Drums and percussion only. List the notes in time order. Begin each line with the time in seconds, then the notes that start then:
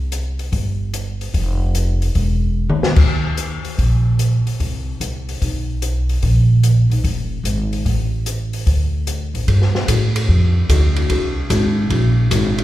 0.12 closed hi-hat
0.39 open hi-hat
0.53 kick, open hi-hat
0.94 closed hi-hat
1.21 open hi-hat
1.34 kick, open hi-hat
1.75 closed hi-hat
2.02 open hi-hat
2.15 kick, open hi-hat
2.70 mid tom
2.83 snare
2.96 kick, crash
3.37 closed hi-hat
3.65 open hi-hat
3.78 kick, open hi-hat
4.19 closed hi-hat
4.47 open hi-hat
4.60 kick, open hi-hat
5.01 closed hi-hat
5.29 open hi-hat
5.42 kick, open hi-hat
5.82 closed hi-hat
6.09 open hi-hat
6.23 kick, open hi-hat
6.63 closed hi-hat
6.91 open hi-hat
7.04 kick, open hi-hat
7.45 closed hi-hat
7.73 open hi-hat
7.86 kick, open hi-hat
8.26 closed hi-hat
8.53 open hi-hat
8.67 kick, open hi-hat
9.07 closed hi-hat
9.35 open hi-hat
9.48 kick, ride
9.62 snare
9.75 snare
9.88 kick, hi-hat pedal, ride
10.16 ride
10.29 kick
10.69 kick, hi-hat pedal, ride
10.96 ride
11.10 kick, ride
11.50 kick, hi-hat pedal, ride
11.90 kick, ride
12.31 kick, hi-hat pedal, ride
12.58 ride